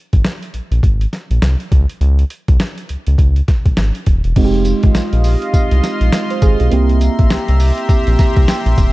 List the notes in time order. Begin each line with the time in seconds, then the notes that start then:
0.13 G#1, kick, closed hi-hat
0.25 snare, closed hi-hat
0.43 closed hi-hat
0.54 A#1, closed hi-hat
0.71 A#1, closed hi-hat
0.83 G#1, kick, closed hi-hat
1.01 closed hi-hat
1.13 snare, closed hi-hat
1.30 A#1, closed hi-hat
1.42 C2, snare, closed hi-hat
1.60 closed hi-hat
1.72 C#2, kick, closed hi-hat
1.89 closed hi-hat
2.01 C#2, closed hi-hat
2.19 closed hi-hat
2.30 closed hi-hat
2.48 C2, kick, closed hi-hat
2.60 snare, closed hi-hat
2.78 closed hi-hat
2.89 C#2, closed hi-hat
3.07 C#2, closed hi-hat
3.18 C#2, kick, closed hi-hat
3.36 closed hi-hat
3.48 kick, snare, closed hi-hat
3.66 A#1, kick, closed hi-hat
3.77 G#1, snare, closed hi-hat
3.95 closed hi-hat
4.06 D#1, kick, closed hi-hat
4.24 E1, closed hi-hat
4.36 F1 G#3 C4 D#4 F4 F#4 D#5 F5 C6, kick, closed hi-hat, crash
4.45 G4
4.54 closed hi-hat
4.65 closed hi-hat, tambourine
4.83 G#1, kick, closed hi-hat
4.95 A#1, snare, closed hi-hat, tambourine
5.13 A#1, closed hi-hat
5.24 open hi-hat, tambourine
5.42 closed hi-hat
5.54 C2, kick, closed hi-hat, tambourine
5.71 C2, closed hi-hat
5.83 snare, closed hi-hat, tambourine
6.01 A#1, closed hi-hat
6.12 snare, closed hi-hat, tambourine
6.30 C5, closed hi-hat
6.42 G#1 G#4, kick, closed hi-hat, tambourine
6.60 B1 F4, closed hi-hat
6.71 C2 A#3 C4 E4 G4 E5 A#5 C6, closed hi-hat
6.89 closed hi-hat
7.01 closed hi-hat, tambourine
7.19 A#1, kick, closed hi-hat
7.30 C2, snare, closed hi-hat, tambourine
7.48 C2, closed hi-hat
7.60 open hi-hat, tambourine
7.78 closed hi-hat
7.89 A#1, kick, closed hi-hat, tambourine
8.07 A#1, closed hi-hat
8.19 A#5, kick, snare, closed hi-hat, tambourine
8.37 C2, kick, closed hi-hat
8.48 G5, snare, closed hi-hat, tambourine
8.66 A#1, closed hi-hat
8.78 D#1 E5, kick, closed hi-hat, tambourine